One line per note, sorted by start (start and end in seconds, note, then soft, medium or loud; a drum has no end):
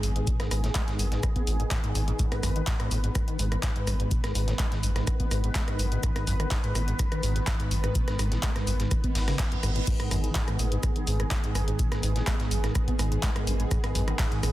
0.00 0.21 G#1 medium
0.00 0.10 F#2 medium
0.00 14.52 D#3 medium
0.00 14.52 B3 medium
0.00 2.18 G#4 medium
0.00 open hi-hat loud
0.00 shaker medium
0.16 0.29 G#2 medium
0.16 closed hi-hat soft
0.27 0.38 B2 loud
0.27 kick loud
0.27 closed hi-hat medium
0.27 shaker medium
0.40 0.49 G#2 medium
0.40 cross-stick medium
0.40 snare soft
0.40 closed hi-hat soft
0.51 0.69 G#1 loud
0.51 0.62 G#2 medium
0.51 cross-stick medium
0.51 open hi-hat loud
0.51 shaker medium
0.64 0.70 A2 medium
0.64 snare medium
0.64 closed hi-hat soft
0.75 0.82 G#3 loud
0.75 kick loud
0.75 snare loud
0.75 clap loud
0.75 closed hi-hat medium
0.75 shaker medium
0.88 1.01 G#2 medium
0.88 snare medium
0.88 closed hi-hat soft
0.99 1.17 G#1 medium
0.99 1.06 F#2 medium
0.99 open hi-hat medium
0.99 shaker medium
1.12 1.21 G#2 medium
1.12 snare soft
1.12 closed hi-hat soft
1.23 1.27 G#2 medium
1.23 kick loud
1.23 cross-stick medium
1.23 closed hi-hat medium
1.23 shaker medium
1.36 1.42 B3 medium
1.36 kick medium
1.36 closed hi-hat soft
1.47 1.65 G#1 loud
1.47 1.58 G#1 medium
1.47 open hi-hat loud
1.47 shaker medium
1.60 1.64 G#2 medium
1.60 closed hi-hat soft
1.71 1.78 G#2 loud
1.71 kick loud
1.71 snare loud
1.71 clap loud
1.71 closed hi-hat medium
1.71 shaker medium
1.84 1.93 G#2 loud
1.84 closed hi-hat soft
1.95 2.13 G#1 medium
1.95 2.02 G#2 medium
1.95 open hi-hat loud
1.95 shaker medium
2.08 2.12 G#2 loud
2.08 closed hi-hat soft
2.19 2.26 G#2 loud
2.19 9.86 B4 medium
2.19 kick loud
2.19 closed hi-hat medium
2.19 shaker medium
2.32 2.41 G#2 medium
2.32 cross-stick medium
2.32 closed hi-hat soft
2.43 2.61 G#1 loud
2.43 2.50 F#2 loud
2.43 cross-stick medium
2.43 open hi-hat loud
2.43 shaker medium
2.56 2.62 D#3 medium
2.56 closed hi-hat soft
2.67 2.74 G#2 medium
2.67 kick loud
2.67 snare loud
2.67 clap loud
2.67 closed hi-hat medium
2.67 open hi-hat medium
2.80 2.89 G#2 loud
2.80 cross-stick medium
2.80 closed hi-hat soft
2.91 3.09 G#1 medium
2.91 2.98 A2 medium
2.91 open hi-hat medium
2.91 shaker medium
3.04 3.10 G#2 medium
3.04 closed hi-hat soft
3.15 3.22 G#2 medium
3.15 kick loud
3.15 cross-stick medium
3.15 closed hi-hat medium
3.15 shaker medium
3.28 3.37 D#3 medium
3.28 closed hi-hat soft
3.39 3.57 G#1 loud
3.39 3.50 G#2 medium
3.39 open hi-hat loud
3.39 shaker medium
3.52 3.56 G#2 medium
3.52 cross-stick medium
3.52 closed hi-hat soft
3.63 3.70 G#2 medium
3.63 kick loud
3.63 snare loud
3.63 clap loud
3.63 closed hi-hat medium
3.63 shaker medium
3.76 3.89 G#2 medium
3.76 closed hi-hat soft
3.87 4.05 G#1 medium
3.87 3.94 F#2 medium
3.87 cross-stick medium
3.87 open hi-hat medium
3.87 shaker medium
4.00 4.13 G#2 medium
4.00 closed hi-hat soft
4.11 4.22 B2 loud
4.11 kick loud
4.11 closed hi-hat medium
4.11 shaker medium
4.24 4.33 G#2 medium
4.24 cross-stick medium
4.24 snare soft
4.24 closed hi-hat soft
4.35 4.53 G#1 loud
4.35 4.46 G#2 medium
4.35 open hi-hat loud
4.35 shaker medium
4.48 4.54 A2 medium
4.48 snare medium
4.48 closed hi-hat soft
4.59 4.66 G#3 loud
4.59 kick loud
4.59 cross-stick medium
4.59 snare loud
4.59 clap loud
4.59 closed hi-hat medium
4.59 shaker medium
4.72 4.85 G#2 medium
4.72 snare medium
4.72 closed hi-hat soft
4.83 5.01 G#1 medium
4.83 4.90 F#2 medium
4.83 open hi-hat medium
4.83 shaker medium
4.96 5.05 G#2 medium
4.96 cross-stick medium
4.96 snare soft
4.96 closed hi-hat soft
5.07 5.11 G#2 medium
5.07 kick loud
5.07 cross-stick medium
5.07 closed hi-hat medium
5.07 shaker medium
5.20 5.26 B3 medium
5.20 kick medium
5.20 closed hi-hat soft
5.31 5.49 G#1 loud
5.31 5.42 G#2 medium
5.31 cross-stick medium
5.31 open hi-hat loud
5.31 shaker medium
5.44 5.50 G#2 medium
5.44 closed hi-hat soft
5.55 5.62 G#3 loud
5.55 kick loud
5.55 snare loud
5.55 clap loud
5.55 closed hi-hat medium
5.55 shaker medium
5.68 5.81 G#2 medium
5.68 cross-stick medium
5.68 closed hi-hat soft
5.79 5.97 G#1 medium
5.79 5.86 F#2 medium
5.79 open hi-hat medium
5.79 shaker medium
5.92 5.98 G#2 medium
5.92 closed hi-hat soft
6.03 6.10 G#2 loud
6.03 kick loud
6.03 cross-stick medium
6.03 closed hi-hat loud
6.03 shaker medium
6.16 6.25 G#2 medium
6.16 cross-stick medium
6.16 closed hi-hat soft
6.27 6.45 G#1 loud
6.27 6.34 F#2 loud
6.27 open hi-hat loud
6.27 shaker medium
6.40 6.46 D#3 medium
6.40 cross-stick medium
6.40 closed hi-hat soft
6.51 6.58 G#2 medium
6.51 kick loud
6.51 snare loud
6.51 clap loud
6.51 closed hi-hat medium
6.51 open hi-hat medium
6.64 6.73 G#2 loud
6.64 closed hi-hat soft
6.75 6.93 G#1 medium
6.75 6.82 A2 medium
6.75 cross-stick medium
6.75 open hi-hat medium
6.75 shaker medium
6.88 6.94 G#2 medium
6.88 closed hi-hat soft
6.99 7.06 G#2 medium
6.99 kick loud
6.99 cross-stick medium
6.99 closed hi-hat loud
6.99 shaker medium
7.12 7.21 D#3 medium
7.12 cross-stick medium
7.12 closed hi-hat soft
7.23 7.41 G#1 loud
7.23 7.34 G#2 medium
7.23 open hi-hat loud
7.23 shaker medium
7.36 7.40 G#2 medium
7.36 closed hi-hat soft
7.47 7.54 G#2 medium
7.47 kick loud
7.47 cross-stick medium
7.47 snare loud
7.47 clap loud
7.47 closed hi-hat medium
7.47 shaker medium
7.60 7.73 G#2 medium
7.60 closed hi-hat soft
7.71 7.89 G#1 medium
7.71 7.78 F#2 medium
7.71 open hi-hat medium
7.71 shaker medium
7.84 7.97 G#2 medium
7.84 cross-stick medium
7.84 closed hi-hat soft
7.95 8.06 B2 loud
7.95 kick loud
7.95 closed hi-hat medium
7.95 shaker medium
8.08 8.17 G#2 medium
8.08 cross-stick medium
8.08 snare soft
8.08 closed hi-hat soft
8.19 8.37 G#1 loud
8.19 8.30 G#2 medium
8.19 cross-stick medium
8.19 open hi-hat loud
8.19 shaker medium
8.32 8.38 A2 medium
8.32 snare medium
8.32 closed hi-hat soft
8.43 8.50 G#3 loud
8.43 kick loud
8.43 snare loud
8.43 clap loud
8.43 closed hi-hat medium
8.43 shaker medium
8.56 8.69 G#2 medium
8.56 cross-stick medium
8.56 snare medium
8.56 closed hi-hat soft
8.67 8.85 G#1 medium
8.67 8.74 F#2 medium
8.67 open hi-hat medium
8.67 shaker medium
8.80 8.89 G#2 medium
8.80 snare soft
8.80 closed hi-hat soft
8.91 8.95 G#2 medium
8.91 kick loud
8.91 cross-stick medium
8.91 closed hi-hat loud
8.91 reverse cymbal medium
8.91 shaker medium
9.04 9.10 B3 medium
9.04 kick medium
9.04 closed hi-hat soft
9.15 9.19 G#1 medium
9.15 9.33 G#1 loud
9.15 snare loud
9.15 open hi-hat loud
9.15 open hi-hat medium
9.28 9.37 C#3 medium
9.28 cross-stick medium
9.28 snare loud
9.28 closed hi-hat soft
9.28 open hi-hat medium
9.39 9.43 G#2 loud
9.39 kick loud
9.39 snare loud
9.39 clap loud
9.39 closed hi-hat medium
9.39 open hi-hat medium
9.52 9.56 F#2 medium
9.52 closed hi-hat soft
9.63 9.81 G#1 loud
9.63 9.70 G#2 loud
9.63 cross-stick medium
9.63 open hi-hat medium
9.63 shaker medium
9.76 9.80 A2 medium
9.76 closed hi-hat soft
9.87 9.94 G#2 loud
9.87 14.52 G#4 medium
9.87 kick loud
9.87 closed hi-hat medium
9.87 crash medium
9.87 shaker medium
10.00 10.09 G#2 medium
10.00 cross-stick medium
10.00 closed hi-hat soft
10.11 10.29 G#1 loud
10.11 10.18 F#2 loud
10.11 cross-stick medium
10.11 open hi-hat loud
10.11 shaker medium
10.24 10.30 D#3 medium
10.24 closed hi-hat soft
10.35 10.42 G#2 medium
10.35 kick loud
10.35 snare loud
10.35 clap loud
10.35 closed hi-hat medium
10.35 open hi-hat medium
10.48 10.57 G#2 loud
10.48 cross-stick medium
10.48 closed hi-hat soft
10.59 10.77 G#1 medium
10.59 10.66 A2 medium
10.59 open hi-hat medium
10.59 shaker medium
10.72 10.78 G#2 medium
10.72 closed hi-hat soft
10.83 10.90 G#2 medium
10.83 kick loud
10.83 cross-stick medium
10.83 closed hi-hat loud
10.83 shaker medium
10.96 11.05 D#3 medium
10.96 closed hi-hat soft
11.07 11.25 G#1 loud
11.07 11.18 G#2 medium
11.07 open hi-hat loud
11.07 shaker medium
11.20 11.24 G#2 medium
11.20 cross-stick medium
11.20 closed hi-hat soft
11.31 11.38 G#2 medium
11.31 kick loud
11.31 snare loud
11.31 clap loud
11.31 closed hi-hat medium
11.31 shaker medium
11.44 11.57 G#2 medium
11.44 closed hi-hat soft
11.55 11.73 G#1 medium
11.55 11.62 F#2 medium
11.55 cross-stick medium
11.55 open hi-hat medium
11.55 shaker medium
11.68 11.81 G#2 medium
11.68 closed hi-hat soft
11.79 11.90 B2 loud
11.79 kick loud
11.79 closed hi-hat medium
11.79 shaker medium
11.92 12.01 G#2 medium
11.92 cross-stick medium
11.92 snare soft
11.92 closed hi-hat soft
12.03 12.21 G#1 loud
12.03 12.14 G#2 medium
12.03 open hi-hat loud
12.03 shaker medium
12.16 12.22 A2 medium
12.16 snare medium
12.16 closed hi-hat soft
12.27 12.34 G#3 loud
12.27 kick loud
12.27 cross-stick medium
12.27 snare loud
12.27 clap loud
12.27 closed hi-hat medium
12.27 shaker medium
12.40 12.53 G#2 medium
12.40 snare medium
12.40 closed hi-hat soft
12.51 12.69 G#1 medium
12.51 12.58 F#2 medium
12.51 open hi-hat medium
12.51 shaker medium
12.64 12.73 G#2 medium
12.64 cross-stick medium
12.64 snare soft
12.64 closed hi-hat soft
12.75 12.79 G#2 medium
12.75 kick loud
12.75 cross-stick medium
12.75 closed hi-hat medium
12.75 shaker medium
12.88 12.94 B3 medium
12.88 kick medium
12.88 closed hi-hat soft
12.99 13.17 G#1 loud
12.99 13.10 G#2 medium
12.99 cross-stick medium
12.99 open hi-hat loud
12.99 shaker medium
13.12 13.18 G#2 medium
13.12 closed hi-hat soft
13.23 13.30 G#3 loud
13.23 kick loud
13.23 snare loud
13.23 clap loud
13.23 closed hi-hat medium
13.23 shaker medium
13.36 13.49 G#2 medium
13.36 cross-stick medium
13.36 closed hi-hat soft
13.47 13.65 G#1 medium
13.47 13.54 F#2 medium
13.47 open hi-hat loud
13.47 shaker medium
13.60 13.66 G#2 medium
13.60 closed hi-hat soft
13.71 13.78 G#2 loud
13.71 kick loud
13.71 cross-stick medium
13.71 closed hi-hat medium
13.71 shaker medium
13.84 13.93 G#2 medium
13.84 cross-stick medium
13.84 closed hi-hat soft
13.95 14.13 G#1 loud
13.95 14.02 F#2 loud
13.95 open hi-hat loud
13.95 shaker medium
14.08 14.14 D#3 medium
14.08 cross-stick medium
14.08 closed hi-hat soft
14.19 14.26 G#2 medium
14.19 kick loud
14.19 snare loud
14.19 clap loud
14.19 closed hi-hat medium
14.19 open hi-hat medium
14.32 14.41 G#2 loud
14.32 closed hi-hat soft
14.43 14.52 G#1 medium
14.43 14.50 A2 medium
14.43 cross-stick medium
14.43 open hi-hat medium
14.43 shaker medium